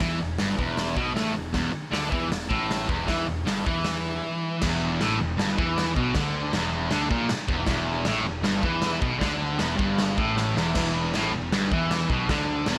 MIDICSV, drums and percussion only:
0, 0, Header, 1, 2, 480
1, 0, Start_track
1, 0, Tempo, 383387
1, 8, Time_signature, 4, 2, 24, 8
1, 16001, End_track
2, 0, Start_track
2, 0, Title_t, "Drums"
2, 8, Note_on_c, 9, 36, 105
2, 133, Note_off_c, 9, 36, 0
2, 482, Note_on_c, 9, 38, 119
2, 482, Note_on_c, 9, 46, 59
2, 607, Note_off_c, 9, 38, 0
2, 607, Note_off_c, 9, 46, 0
2, 735, Note_on_c, 9, 36, 98
2, 860, Note_off_c, 9, 36, 0
2, 969, Note_on_c, 9, 38, 104
2, 969, Note_on_c, 9, 46, 55
2, 1094, Note_off_c, 9, 38, 0
2, 1094, Note_off_c, 9, 46, 0
2, 1209, Note_on_c, 9, 36, 109
2, 1335, Note_off_c, 9, 36, 0
2, 1460, Note_on_c, 9, 38, 118
2, 1460, Note_on_c, 9, 46, 62
2, 1585, Note_off_c, 9, 38, 0
2, 1585, Note_off_c, 9, 46, 0
2, 1927, Note_on_c, 9, 38, 110
2, 1927, Note_on_c, 9, 46, 55
2, 1931, Note_on_c, 9, 36, 100
2, 2052, Note_off_c, 9, 38, 0
2, 2052, Note_off_c, 9, 46, 0
2, 2057, Note_off_c, 9, 36, 0
2, 2422, Note_on_c, 9, 38, 111
2, 2422, Note_on_c, 9, 46, 70
2, 2547, Note_off_c, 9, 38, 0
2, 2547, Note_off_c, 9, 46, 0
2, 2656, Note_on_c, 9, 36, 111
2, 2781, Note_off_c, 9, 36, 0
2, 2902, Note_on_c, 9, 38, 113
2, 2902, Note_on_c, 9, 46, 64
2, 3027, Note_off_c, 9, 38, 0
2, 3027, Note_off_c, 9, 46, 0
2, 3139, Note_on_c, 9, 36, 104
2, 3264, Note_off_c, 9, 36, 0
2, 3390, Note_on_c, 9, 38, 113
2, 3390, Note_on_c, 9, 46, 65
2, 3515, Note_off_c, 9, 38, 0
2, 3515, Note_off_c, 9, 46, 0
2, 3619, Note_on_c, 9, 36, 111
2, 3744, Note_off_c, 9, 36, 0
2, 3858, Note_on_c, 9, 38, 108
2, 3858, Note_on_c, 9, 46, 54
2, 3861, Note_on_c, 9, 36, 96
2, 3983, Note_off_c, 9, 38, 0
2, 3983, Note_off_c, 9, 46, 0
2, 3987, Note_off_c, 9, 36, 0
2, 4345, Note_on_c, 9, 38, 120
2, 4345, Note_on_c, 9, 46, 61
2, 4471, Note_off_c, 9, 38, 0
2, 4471, Note_off_c, 9, 46, 0
2, 4588, Note_on_c, 9, 36, 114
2, 4714, Note_off_c, 9, 36, 0
2, 4814, Note_on_c, 9, 38, 116
2, 4814, Note_on_c, 9, 46, 55
2, 4940, Note_off_c, 9, 38, 0
2, 4940, Note_off_c, 9, 46, 0
2, 5780, Note_on_c, 9, 38, 116
2, 5780, Note_on_c, 9, 49, 117
2, 5780, Note_on_c, 9, 57, 66
2, 5792, Note_on_c, 9, 36, 109
2, 5905, Note_off_c, 9, 38, 0
2, 5905, Note_off_c, 9, 49, 0
2, 5905, Note_off_c, 9, 57, 0
2, 5918, Note_off_c, 9, 36, 0
2, 6270, Note_on_c, 9, 38, 120
2, 6270, Note_on_c, 9, 57, 70
2, 6395, Note_off_c, 9, 38, 0
2, 6395, Note_off_c, 9, 57, 0
2, 6754, Note_on_c, 9, 38, 113
2, 6754, Note_on_c, 9, 57, 69
2, 6879, Note_off_c, 9, 38, 0
2, 6879, Note_off_c, 9, 57, 0
2, 6992, Note_on_c, 9, 36, 114
2, 7117, Note_off_c, 9, 36, 0
2, 7234, Note_on_c, 9, 38, 127
2, 7234, Note_on_c, 9, 57, 69
2, 7359, Note_off_c, 9, 38, 0
2, 7359, Note_off_c, 9, 57, 0
2, 7467, Note_on_c, 9, 36, 108
2, 7592, Note_off_c, 9, 36, 0
2, 7694, Note_on_c, 9, 38, 126
2, 7694, Note_on_c, 9, 57, 60
2, 7704, Note_on_c, 9, 36, 114
2, 7820, Note_off_c, 9, 38, 0
2, 7820, Note_off_c, 9, 57, 0
2, 7829, Note_off_c, 9, 36, 0
2, 8177, Note_on_c, 9, 38, 124
2, 8177, Note_on_c, 9, 57, 69
2, 8302, Note_off_c, 9, 38, 0
2, 8302, Note_off_c, 9, 57, 0
2, 8648, Note_on_c, 9, 38, 111
2, 8648, Note_on_c, 9, 57, 63
2, 8773, Note_off_c, 9, 38, 0
2, 8773, Note_off_c, 9, 57, 0
2, 8898, Note_on_c, 9, 36, 104
2, 9023, Note_off_c, 9, 36, 0
2, 9130, Note_on_c, 9, 38, 127
2, 9130, Note_on_c, 9, 57, 69
2, 9255, Note_off_c, 9, 38, 0
2, 9255, Note_off_c, 9, 57, 0
2, 9371, Note_on_c, 9, 36, 123
2, 9496, Note_off_c, 9, 36, 0
2, 9596, Note_on_c, 9, 38, 115
2, 9596, Note_on_c, 9, 57, 70
2, 9609, Note_on_c, 9, 36, 113
2, 9722, Note_off_c, 9, 38, 0
2, 9722, Note_off_c, 9, 57, 0
2, 9734, Note_off_c, 9, 36, 0
2, 10079, Note_on_c, 9, 38, 127
2, 10079, Note_on_c, 9, 57, 74
2, 10204, Note_off_c, 9, 38, 0
2, 10204, Note_off_c, 9, 57, 0
2, 10569, Note_on_c, 9, 38, 109
2, 10569, Note_on_c, 9, 57, 69
2, 10694, Note_off_c, 9, 38, 0
2, 10694, Note_off_c, 9, 57, 0
2, 10806, Note_on_c, 9, 36, 111
2, 10931, Note_off_c, 9, 36, 0
2, 11039, Note_on_c, 9, 38, 123
2, 11039, Note_on_c, 9, 57, 65
2, 11164, Note_off_c, 9, 38, 0
2, 11164, Note_off_c, 9, 57, 0
2, 11291, Note_on_c, 9, 36, 120
2, 11417, Note_off_c, 9, 36, 0
2, 11536, Note_on_c, 9, 36, 100
2, 11536, Note_on_c, 9, 38, 114
2, 11536, Note_on_c, 9, 57, 62
2, 11661, Note_off_c, 9, 36, 0
2, 11661, Note_off_c, 9, 38, 0
2, 11661, Note_off_c, 9, 57, 0
2, 12007, Note_on_c, 9, 38, 122
2, 12007, Note_on_c, 9, 57, 66
2, 12132, Note_off_c, 9, 38, 0
2, 12132, Note_off_c, 9, 57, 0
2, 12258, Note_on_c, 9, 36, 113
2, 12384, Note_off_c, 9, 36, 0
2, 12499, Note_on_c, 9, 38, 125
2, 12499, Note_on_c, 9, 57, 58
2, 12624, Note_off_c, 9, 38, 0
2, 12624, Note_off_c, 9, 57, 0
2, 12743, Note_on_c, 9, 36, 118
2, 12869, Note_off_c, 9, 36, 0
2, 12984, Note_on_c, 9, 38, 73
2, 13109, Note_off_c, 9, 38, 0
2, 13235, Note_on_c, 9, 38, 97
2, 13360, Note_off_c, 9, 38, 0
2, 13461, Note_on_c, 9, 38, 126
2, 13461, Note_on_c, 9, 49, 116
2, 13461, Note_on_c, 9, 57, 66
2, 13466, Note_on_c, 9, 36, 110
2, 13586, Note_off_c, 9, 38, 0
2, 13586, Note_off_c, 9, 49, 0
2, 13586, Note_off_c, 9, 57, 0
2, 13591, Note_off_c, 9, 36, 0
2, 13945, Note_on_c, 9, 38, 113
2, 13945, Note_on_c, 9, 57, 72
2, 14070, Note_off_c, 9, 38, 0
2, 14070, Note_off_c, 9, 57, 0
2, 14430, Note_on_c, 9, 38, 119
2, 14430, Note_on_c, 9, 57, 68
2, 14555, Note_off_c, 9, 38, 0
2, 14555, Note_off_c, 9, 57, 0
2, 14669, Note_on_c, 9, 36, 117
2, 14794, Note_off_c, 9, 36, 0
2, 14910, Note_on_c, 9, 38, 119
2, 14910, Note_on_c, 9, 57, 70
2, 15035, Note_off_c, 9, 38, 0
2, 15035, Note_off_c, 9, 57, 0
2, 15146, Note_on_c, 9, 36, 104
2, 15271, Note_off_c, 9, 36, 0
2, 15391, Note_on_c, 9, 36, 107
2, 15392, Note_on_c, 9, 38, 118
2, 15392, Note_on_c, 9, 57, 67
2, 15516, Note_off_c, 9, 36, 0
2, 15517, Note_off_c, 9, 38, 0
2, 15517, Note_off_c, 9, 57, 0
2, 15855, Note_on_c, 9, 38, 126
2, 15855, Note_on_c, 9, 57, 68
2, 15980, Note_off_c, 9, 38, 0
2, 15980, Note_off_c, 9, 57, 0
2, 16001, End_track
0, 0, End_of_file